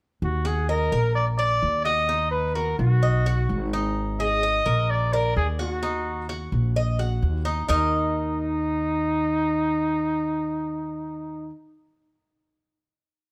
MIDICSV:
0, 0, Header, 1, 4, 480
1, 0, Start_track
1, 0, Key_signature, -6, "minor"
1, 0, Tempo, 467654
1, 232, Time_signature, 4, 2, 24, 8
1, 13671, End_track
2, 0, Start_track
2, 0, Title_t, "Trumpet"
2, 0, Program_c, 0, 56
2, 250, Note_on_c, 0, 66, 82
2, 479, Note_on_c, 0, 68, 86
2, 495, Note_off_c, 0, 66, 0
2, 707, Note_off_c, 0, 68, 0
2, 714, Note_on_c, 0, 70, 90
2, 1158, Note_off_c, 0, 70, 0
2, 1182, Note_on_c, 0, 74, 91
2, 1292, Note_off_c, 0, 74, 0
2, 1418, Note_on_c, 0, 74, 115
2, 1869, Note_off_c, 0, 74, 0
2, 1896, Note_on_c, 0, 75, 111
2, 2347, Note_off_c, 0, 75, 0
2, 2370, Note_on_c, 0, 71, 93
2, 2618, Note_on_c, 0, 70, 96
2, 2634, Note_off_c, 0, 71, 0
2, 2862, Note_off_c, 0, 70, 0
2, 2866, Note_on_c, 0, 66, 85
2, 3782, Note_off_c, 0, 66, 0
2, 4315, Note_on_c, 0, 75, 110
2, 5031, Note_on_c, 0, 74, 90
2, 5047, Note_off_c, 0, 75, 0
2, 5268, Note_on_c, 0, 70, 96
2, 5283, Note_off_c, 0, 74, 0
2, 5503, Note_off_c, 0, 70, 0
2, 5508, Note_on_c, 0, 68, 89
2, 5614, Note_off_c, 0, 68, 0
2, 5767, Note_on_c, 0, 66, 81
2, 6430, Note_off_c, 0, 66, 0
2, 7898, Note_on_c, 0, 63, 88
2, 11805, Note_off_c, 0, 63, 0
2, 13671, End_track
3, 0, Start_track
3, 0, Title_t, "Cuban tres"
3, 0, Program_c, 1, 25
3, 461, Note_on_c, 1, 66, 74
3, 699, Note_off_c, 1, 66, 0
3, 709, Note_on_c, 1, 75, 65
3, 943, Note_off_c, 1, 75, 0
3, 947, Note_on_c, 1, 70, 70
3, 1414, Note_off_c, 1, 70, 0
3, 1424, Note_on_c, 1, 74, 73
3, 1892, Note_off_c, 1, 74, 0
3, 1903, Note_on_c, 1, 66, 71
3, 2138, Note_off_c, 1, 66, 0
3, 2143, Note_on_c, 1, 63, 79
3, 2610, Note_off_c, 1, 63, 0
3, 2621, Note_on_c, 1, 66, 64
3, 3088, Note_off_c, 1, 66, 0
3, 3106, Note_on_c, 1, 75, 73
3, 3338, Note_off_c, 1, 75, 0
3, 3349, Note_on_c, 1, 66, 82
3, 3811, Note_off_c, 1, 66, 0
3, 3832, Note_on_c, 1, 63, 83
3, 4292, Note_off_c, 1, 63, 0
3, 4310, Note_on_c, 1, 68, 73
3, 4538, Note_off_c, 1, 68, 0
3, 4548, Note_on_c, 1, 75, 72
3, 4777, Note_off_c, 1, 75, 0
3, 4780, Note_on_c, 1, 70, 76
3, 5244, Note_off_c, 1, 70, 0
3, 5269, Note_on_c, 1, 74, 78
3, 5729, Note_off_c, 1, 74, 0
3, 5740, Note_on_c, 1, 66, 71
3, 5971, Note_off_c, 1, 66, 0
3, 5980, Note_on_c, 1, 63, 83
3, 6443, Note_off_c, 1, 63, 0
3, 6458, Note_on_c, 1, 66, 74
3, 6922, Note_off_c, 1, 66, 0
3, 6942, Note_on_c, 1, 75, 71
3, 7171, Note_off_c, 1, 75, 0
3, 7176, Note_on_c, 1, 66, 76
3, 7641, Note_off_c, 1, 66, 0
3, 7648, Note_on_c, 1, 63, 76
3, 7876, Note_off_c, 1, 63, 0
3, 7888, Note_on_c, 1, 63, 92
3, 7894, Note_on_c, 1, 70, 83
3, 7899, Note_on_c, 1, 75, 102
3, 11795, Note_off_c, 1, 63, 0
3, 11801, Note_off_c, 1, 70, 0
3, 11805, Note_off_c, 1, 75, 0
3, 13671, End_track
4, 0, Start_track
4, 0, Title_t, "Upright bass"
4, 0, Program_c, 2, 32
4, 226, Note_on_c, 2, 39, 99
4, 907, Note_off_c, 2, 39, 0
4, 946, Note_on_c, 2, 34, 83
4, 1626, Note_off_c, 2, 34, 0
4, 1669, Note_on_c, 2, 39, 90
4, 2801, Note_off_c, 2, 39, 0
4, 2863, Note_on_c, 2, 35, 92
4, 3541, Note_off_c, 2, 35, 0
4, 3585, Note_on_c, 2, 32, 91
4, 4715, Note_off_c, 2, 32, 0
4, 4785, Note_on_c, 2, 34, 88
4, 5459, Note_off_c, 2, 34, 0
4, 5505, Note_on_c, 2, 39, 95
4, 6634, Note_off_c, 2, 39, 0
4, 6693, Note_on_c, 2, 34, 93
4, 7373, Note_off_c, 2, 34, 0
4, 7415, Note_on_c, 2, 39, 91
4, 7839, Note_off_c, 2, 39, 0
4, 7894, Note_on_c, 2, 39, 98
4, 11801, Note_off_c, 2, 39, 0
4, 13671, End_track
0, 0, End_of_file